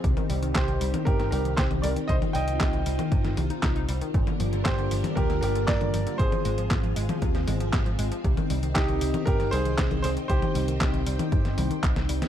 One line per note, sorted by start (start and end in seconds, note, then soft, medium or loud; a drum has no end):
0.00 0.13 C3 medium
0.00 4.10 C4 medium
0.04 0.15 C2 loud
0.04 4.10 D#4 medium
0.04 2.07 G4 medium
0.04 kick loud
0.04 closed hi-hat medium
0.17 0.26 D#3 medium
0.17 closed hi-hat soft
0.17 high tom medium
0.30 0.52 C2 medium
0.30 0.39 G3 medium
0.30 open hi-hat loud
0.43 0.52 D#3 medium
0.43 closed hi-hat medium
0.54 0.77 C2 loud
0.54 0.64 C3 medium
0.54 1.03 G4 medium
0.54 1.08 C5 medium
0.54 kick loud
0.54 snare loud
0.54 clap loud
0.54 closed hi-hat medium
0.68 0.77 D#3 medium
0.68 closed hi-hat soft
0.81 0.92 C2 medium
0.81 0.90 G3 medium
0.81 open hi-hat loud
0.94 1.03 D#3 medium
0.94 closed hi-hat medium
0.94 high tom medium
1.05 1.29 G1 medium
1.05 1.16 C3 medium
1.05 1.31 G4 medium
1.05 1.29 A#4 medium
1.05 kick loud
1.05 closed hi-hat medium
1.20 1.29 D#3 medium
1.20 snare soft
1.20 closed hi-hat soft
1.31 1.54 C2 loud
1.31 1.41 G3 medium
1.31 1.57 G4 medium
1.31 1.58 A#4 medium
1.31 open hi-hat loud
1.45 1.54 D#3 medium
1.45 closed hi-hat medium
1.57 1.80 C2 medium
1.57 1.67 C3 medium
1.57 1.64 G4 medium
1.57 1.62 C5 loud
1.57 kick loud
1.57 snare loud
1.57 clap loud
1.57 closed hi-hat medium
1.71 1.80 D#3 medium
1.71 closed hi-hat soft
1.71 high tom medium
1.82 1.95 C2 loud
1.82 1.93 G3 medium
1.82 1.90 A#4 medium
1.82 1.88 D5 medium
1.82 open hi-hat loud
1.96 2.05 D#3 medium
1.96 closed hi-hat medium
2.08 2.20 C2 loud
2.08 2.18 C3 medium
2.08 4.12 F4 medium
2.08 2.16 C5 medium
2.08 2.14 D#5 loud
2.08 kick loud
2.08 closed hi-hat medium
2.22 2.31 D#3 medium
2.22 closed hi-hat soft
2.22 high tom medium
2.33 2.57 C2 medium
2.33 2.44 G3 medium
2.33 3.34 D#5 medium
2.33 3.33 G5 loud
2.33 open hi-hat loud
2.48 2.57 D#3 medium
2.48 closed hi-hat medium
2.60 2.82 C2 loud
2.60 2.70 C3 medium
2.60 kick loud
2.60 snare loud
2.60 clap loud
2.60 closed hi-hat medium
2.73 2.82 D#3 medium
2.73 closed hi-hat soft
2.86 2.97 C2 medium
2.86 2.95 G3 medium
2.86 open hi-hat loud
2.99 3.08 D#3 medium
2.99 closed hi-hat medium
2.99 high tom medium
3.12 3.34 G1 medium
3.12 3.21 C3 medium
3.12 kick loud
3.12 closed hi-hat medium
3.25 3.34 D#3 medium
3.25 snare soft
3.25 closed hi-hat soft
3.37 3.48 C2 loud
3.37 3.47 C3 medium
3.37 open hi-hat loud
3.37 high tom medium
3.50 3.62 D#4 medium
3.50 closed hi-hat medium
3.63 3.85 C2 medium
3.63 3.72 D#4 medium
3.63 kick loud
3.63 snare loud
3.63 clap loud
3.63 closed hi-hat soft
3.76 3.85 D#4 loud
3.76 closed hi-hat soft
3.89 4.00 C2 medium
3.89 3.94 G3 loud
3.89 open hi-hat loud
4.01 4.14 D#3 medium
4.01 closed hi-hat soft
4.14 4.25 G1 loud
4.14 4.23 A#2 medium
4.14 6.17 G3 medium
4.14 6.17 A#3 medium
4.14 6.17 D4 medium
4.14 8.21 F4 medium
4.14 6.17 A#4 medium
4.14 kick loud
4.14 closed hi-hat medium
4.27 4.36 D3 medium
4.27 closed hi-hat soft
4.27 high tom medium
4.40 4.62 G1 medium
4.40 4.49 F3 medium
4.40 open hi-hat loud
4.53 4.62 D3 medium
4.53 closed hi-hat soft
4.64 4.88 G1 loud
4.64 4.75 A#2 medium
4.64 5.14 G4 medium
4.64 5.18 C5 medium
4.64 kick loud
4.64 snare loud
4.64 clap loud
4.64 closed hi-hat medium
4.78 4.88 D3 medium
4.78 closed hi-hat soft
4.91 5.02 G1 medium
4.91 5.00 F3 medium
4.91 open hi-hat loud
5.04 5.13 D3 medium
5.04 closed hi-hat medium
5.04 high tom medium
5.16 5.39 D2 medium
5.16 5.26 A#2 medium
5.16 5.41 G4 medium
5.16 5.40 A#4 medium
5.16 kick loud
5.16 closed hi-hat soft
5.30 5.39 D3 medium
5.30 snare soft
5.30 closed hi-hat soft
5.41 5.64 G1 loud
5.41 5.52 F3 medium
5.41 5.67 G4 medium
5.41 5.66 A#4 medium
5.41 open hi-hat loud
5.55 5.64 D3 medium
5.55 closed hi-hat medium
5.67 5.77 A#2 medium
5.67 6.16 A#4 medium
5.67 6.15 D5 loud
5.67 kick loud
5.67 snare loud
5.67 clap loud
5.67 closed hi-hat medium
5.81 5.90 D3 medium
5.81 closed hi-hat soft
5.81 high tom medium
5.94 6.05 G1 loud
5.94 6.03 F3 medium
5.94 open hi-hat loud
6.07 6.16 D3 medium
6.07 closed hi-hat medium
6.18 6.30 G#1 loud
6.18 6.29 C3 medium
6.18 12.28 C4 medium
6.18 8.23 G#4 medium
6.18 6.67 G#4 medium
6.18 6.66 C5 loud
6.18 kick loud
6.18 closed hi-hat medium
6.32 6.41 F3 medium
6.32 closed hi-hat soft
6.32 high tom medium
6.45 6.67 G#1 medium
6.45 6.54 G#3 medium
6.45 open hi-hat loud
6.58 6.67 F3 medium
6.58 closed hi-hat medium
6.71 6.93 G#1 loud
6.71 6.80 C3 medium
6.71 kick loud
6.71 snare loud
6.71 clap loud
6.71 closed hi-hat medium
6.83 6.93 F3 medium
6.83 closed hi-hat soft
6.96 7.07 G#1 medium
6.96 7.05 G#3 medium
6.96 open hi-hat loud
7.09 7.18 F3 medium
7.09 closed hi-hat medium
7.09 high tom medium
7.22 7.44 D#2 medium
7.22 7.31 C3 medium
7.22 kick loud
7.22 closed hi-hat medium
7.35 7.44 F3 medium
7.35 snare soft
7.35 closed hi-hat soft
7.47 7.70 G#1 loud
7.47 7.57 G#3 medium
7.47 open hi-hat loud
7.47 high tom medium
7.60 7.70 F3 medium
7.60 closed hi-hat medium
7.73 7.95 G#1 medium
7.73 7.82 C3 medium
7.73 kick loud
7.73 snare loud
7.73 clap medium
7.73 closed hi-hat medium
7.86 7.95 F3 medium
7.86 closed hi-hat soft
7.99 8.10 G#1 loud
7.99 8.08 G#3 medium
7.99 open hi-hat loud
8.12 8.21 F3 medium
8.12 closed hi-hat medium
8.24 8.36 C2 loud
8.24 8.34 C3 medium
8.24 12.28 D#4 medium
8.24 12.28 G5 medium
8.24 kick loud
8.24 closed hi-hat medium
8.37 8.46 D#3 medium
8.37 closed hi-hat soft
8.37 high tom medium
8.50 8.72 C2 medium
8.50 8.59 G3 medium
8.50 open hi-hat loud
8.63 8.72 D#3 medium
8.63 closed hi-hat medium
8.74 8.98 C2 loud
8.74 8.85 C3 medium
8.74 9.24 D#4 medium
8.74 9.26 G4 loud
8.74 kick loud
8.74 snare loud
8.74 clap loud
8.74 closed hi-hat medium
8.89 8.98 D#3 medium
8.89 closed hi-hat soft
9.01 9.12 C2 medium
9.01 9.11 G3 medium
9.01 open hi-hat loud
9.14 9.23 D#3 medium
9.14 closed hi-hat medium
9.14 high tom medium
9.26 9.49 G1 medium
9.26 9.36 C3 medium
9.26 9.51 G4 medium
9.26 9.53 A#4 loud
9.26 kick loud
9.26 closed hi-hat medium
9.40 9.49 D#3 medium
9.40 snare soft
9.40 closed hi-hat soft
9.51 9.75 C2 loud
9.51 9.62 G3 medium
9.51 10.01 G#4 medium
9.51 10.01 C5 loud
9.51 open hi-hat loud
9.65 9.75 D#3 medium
9.65 closed hi-hat medium
9.78 10.00 C2 medium
9.78 9.88 C3 medium
9.78 kick loud
9.78 snare loud
9.78 clap loud
9.78 closed hi-hat medium
9.91 10.00 D#3 medium
9.91 closed hi-hat soft
9.91 high tom medium
10.02 10.15 C2 loud
10.02 10.13 G3 medium
10.02 10.10 G#4 medium
10.02 10.08 C5 loud
10.02 open hi-hat loud
10.17 10.26 D#3 medium
10.17 closed hi-hat medium
10.28 10.41 C2 loud
10.28 10.39 C3 medium
10.28 11.80 G4 medium
10.28 11.79 C5 loud
10.28 kick loud
10.28 closed hi-hat medium
10.42 10.52 D#3 medium
10.42 closed hi-hat soft
10.42 high tom medium
10.55 10.77 C2 medium
10.55 10.64 G3 medium
10.55 open hi-hat loud
10.68 10.77 D#3 medium
10.68 closed hi-hat medium
10.81 11.03 C2 loud
10.81 10.90 C3 medium
10.81 kick loud
10.81 snare loud
10.81 clap loud
10.81 closed hi-hat medium
10.94 11.03 D#3 medium
10.94 closed hi-hat soft
11.06 11.18 C2 medium
11.06 11.16 G3 medium
11.06 open hi-hat loud
11.19 11.29 D#3 medium
11.19 closed hi-hat medium
11.19 high tom medium
11.32 11.54 G1 medium
11.32 11.41 C3 medium
11.32 kick loud
11.32 closed hi-hat medium
11.45 11.54 D#3 medium
11.45 snare soft
11.45 closed hi-hat soft
11.58 11.69 C2 loud
11.58 11.67 G3 medium
11.58 open hi-hat loud
11.58 high tom medium
11.71 11.80 D#3 medium
11.71 closed hi-hat medium
11.83 12.06 C2 medium
11.83 11.93 C3 medium
11.83 kick loud
11.83 snare medium
11.83 clap loud
11.83 closed hi-hat medium
11.96 12.05 D#3 medium
11.96 snare medium
11.96 closed hi-hat soft
12.09 12.20 C2 medium
12.09 12.18 G3 medium
12.09 open hi-hat loud
12.22 12.28 D#3 medium
12.22 snare medium
12.22 closed hi-hat medium